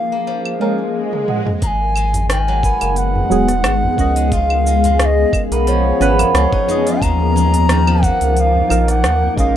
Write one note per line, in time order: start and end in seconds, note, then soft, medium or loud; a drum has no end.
0.00 0.93 F3 medium
0.00 1.61 G#3 medium
0.00 0.12 A#3 medium
0.00 0.93 A#3 medium
0.00 0.93 C#4 medium
0.00 1.45 F4 medium
0.00 0.93 G#4 medium
0.00 0.96 F5 loud
0.12 2.70 A#3 medium
0.27 0.60 F3 medium
0.27 swell medium
0.45 claves medium
0.60 1.67 F3 medium
0.60 0.80 G#3 medium
0.60 0.80 C#4 medium
0.60 0.81 A#4 loud
1.13 high tom soft
1.28 1.96 G#3 medium
1.28 1.97 D#5 medium
1.28 1.96 F#5 medium
1.28 mid tom medium
1.47 mid tom medium
1.62 2.73 G#1 loud
1.62 4.29 G#3 medium
1.62 1.95 G#3 medium
1.62 4.29 B3 medium
1.62 4.29 D#4 medium
1.62 6.98 G#4 loud
1.62 1.68 A#5 medium
1.62 kick loud
1.62 open hi-hat soft
1.62 shaker soft
1.67 2.26 G#5 loud
1.81 tabla na soft
1.96 2.35 G#3 medium
1.96 claves medium
1.96 shaker medium
2.13 open hi-hat medium
2.13 tabla ge loud
2.13 shaker soft
2.30 4.37 D#3 medium
2.30 2.99 G#5 loud
2.30 cross-stick loud
2.30 open hi-hat soft
2.30 shaker soft
2.48 4.37 F#3 medium
2.63 5.52 B3 medium
2.63 kick loud
2.63 tabla tin medium
2.63 shaker medium
2.81 3.23 F#1 medium
2.81 open hi-hat medium
2.81 tabla na medium
2.81 claves medium
2.81 shaker soft
2.96 4.34 F#5 loud
2.96 open hi-hat medium
2.96 shaker soft
3.16 tabla ge loud
3.29 3.66 D#1 medium
3.29 3.49 F#3 loud
3.29 3.50 B3 medium
3.29 3.50 G#4 loud
3.29 tabla tin soft
3.29 shaker medium
3.48 cross-stick soft
3.48 open hi-hat medium
3.48 shaker soft
3.64 3.89 G#1 medium
3.64 cross-stick loud
3.64 open hi-hat soft
3.64 claves medium
3.64 shaker soft
3.83 tabla ge medium
3.96 5.25 C#2 loud
3.96 5.96 F3 medium
3.96 5.97 C#4 medium
3.96 4.39 F#4 medium
3.96 5.98 D#5 medium
3.96 kick loud
3.96 tabla tin medium
3.96 shaker medium
4.16 4.37 G#3 medium
4.16 open hi-hat medium
4.16 shaker soft
4.32 9.57 F3 medium
4.32 6.99 B3 medium
4.32 6.99 C#4 medium
4.32 6.85 F4 medium
4.32 5.01 F5 loud
4.32 kick loud
4.32 open hi-hat soft
4.32 shaker soft
4.50 tabla na soft
4.50 claves medium
4.67 4.84 G#3 medium
4.67 shaker medium
4.84 6.34 G#3 medium
4.84 open hi-hat medium
4.84 tabla ge medium
4.84 shaker soft
4.99 5.06 F5 medium
4.99 cross-stick loud
4.99 open hi-hat soft
4.99 shaker soft
5.05 5.41 D#5 loud
5.33 kick loud
5.33 tabla tin medium
5.33 claves medium
5.33 shaker medium
5.51 5.93 B1 medium
5.51 6.00 B3 medium
5.51 open hi-hat medium
5.51 tabla na medium
5.51 shaker soft
5.67 7.07 F3 medium
5.67 6.31 C#5 loud
5.67 open hi-hat soft
5.67 shaker soft
5.85 tabla tin medium
6.00 6.25 G#1 loud
6.00 6.19 F3 medium
6.00 8.09 B3 loud
6.00 6.20 C#4 medium
6.00 6.20 B4 loud
6.00 cross-stick soft
6.00 shaker medium
6.19 open hi-hat medium
6.19 tabla na medium
6.19 tabla ge loud
6.19 claves medium
6.19 shaker soft
6.34 6.47 C#2 medium
6.34 6.67 G#3 medium
6.34 7.04 C#5 loud
6.34 cross-stick loud
6.34 open hi-hat soft
6.34 shaker soft
6.52 9.23 D#4 medium
6.52 kick loud
6.67 8.66 F3 medium
6.67 7.01 G#3 loud
6.67 8.67 D#4 medium
6.67 tabla ge loud
6.67 shaker medium
6.71 8.68 D#5 medium
6.87 9.37 F4 medium
6.87 open hi-hat medium
6.87 shaker soft
7.02 8.12 D#2 loud
7.02 7.35 G#3 medium
7.02 9.57 A#3 medium
7.02 9.57 D#4 medium
7.02 9.57 A#4 loud
7.02 8.05 A#5 loud
7.02 kick loud
7.02 open hi-hat soft
7.02 claves medium
7.02 shaker soft
7.21 tabla na soft
7.36 7.74 G#3 medium
7.36 shaker medium
7.54 open hi-hat medium
7.54 tabla ge medium
7.54 shaker soft
7.69 9.57 D#3 medium
7.69 cross-stick loud
7.69 open hi-hat soft
7.69 shaker soft
7.87 9.57 F3 medium
7.87 claves medium
8.03 9.57 A#3 medium
8.03 8.37 F#5 loud
8.03 kick loud
8.03 tabla tin medium
8.03 shaker medium
8.21 8.63 C#2 medium
8.21 open hi-hat medium
8.21 tabla na medium
8.21 shaker soft
8.37 8.42 F#5 loud
8.37 open hi-hat soft
8.37 shaker soft
8.41 8.91 F5 loud
8.54 tabla ge loud
8.69 9.06 A#1 loud
8.69 8.89 F3 loud
8.69 8.89 D#4 medium
8.69 8.90 A#4 loud
8.69 tabla tin soft
8.69 claves medium
8.69 shaker medium
8.88 9.37 F#5 loud
8.88 cross-stick soft
8.88 open hi-hat medium
8.88 shaker soft
9.04 9.28 D#2 medium
9.04 cross-stick loud
9.04 open hi-hat soft
9.04 shaker soft
9.22 tabla ge medium
9.36 9.57 A#1 loud
9.36 9.57 G#3 medium
9.36 9.57 C#4 medium
9.36 9.57 F4 medium
9.36 9.57 F5 loud
9.36 kick loud
9.36 tabla tin medium
9.36 shaker medium
9.40 9.57 D#5 medium